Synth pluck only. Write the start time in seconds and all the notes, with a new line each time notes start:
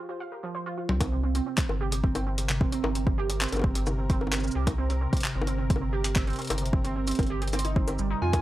0.09 F4
0.20 F5
0.32 A#4
0.43 F3
0.55 C5
0.66 F4
0.78 F4
0.89 C4
1.01 C4
1.12 C3
1.24 C4
1.35 C4
1.46 C4
1.58 C4
1.69 C4
1.81 G4
1.92 G4
2.04 C4
2.15 C4
2.27 C4
2.38 C4
2.49 C3
2.61 C4
2.72 C4
2.84 C4
2.95 C4
3.07 C4
3.18 G4
3.30 G4
3.41 C4
3.52 C4
3.64 C4
3.75 C4
3.87 C3
3.98 C4
4.10 C4
4.21 C4
4.33 C4
4.44 C4
4.55 G4
4.67 G4
4.78 C4
4.90 C4
5.01 C4
5.13 C4
5.24 C3
5.35 C4
5.47 C4
5.58 C4
5.70 C4
5.81 C4
5.93 G4
6.04 G4
6.16 C4
6.27 C4
6.39 C4
6.50 C4
6.62 C3
6.73 C4
6.84 C4
6.96 C4
7.07 C4
7.19 C4
7.30 G4
7.42 G4
7.53 C4
7.65 D#4
7.76 C4
7.88 C4
7.99 G3
8.10 D#4
8.22 F4
8.33 F4